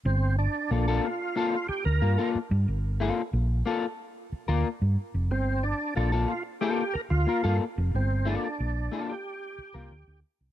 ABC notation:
X:1
M:4/4
L:1/16
Q:1/4=91
K:Gm
V:1 name="Clean electric guitar"
z4 [B,FA] [B,FA] z2 [B,FA] z3 [B,FB] [B,FA] z2 | z2 [B,FA] z3 [B,FA] z4 [B,FB] z4 | z4 [B,FA] [B,FA] z2 [B,FA] z3 [B,FB] [B,FA] z2 | z2 [B,FA] z3 [B,FA] z4 [B,FB] z4 |]
V:2 name="Tonewheel organ"
C2 D2 D2 F2 F2 G B3 z2 | z16 | C2 D2 D2 F2 G2 B F3 z2 | C2 D4- D G6- G z2 |]
V:3 name="Fingered electric bass" clef=bass
G,,,3 z B,,,2 z4 z D,, G,, z2 G,, | G,,,3 z B,,,2 z4 z D,, z G,, z F,,, | G,,,3 z B,,,2 z4 z D,, z G,, z F,,, | G,,,3 z B,,,2 z4 z C,, D,, D,, z C,, |]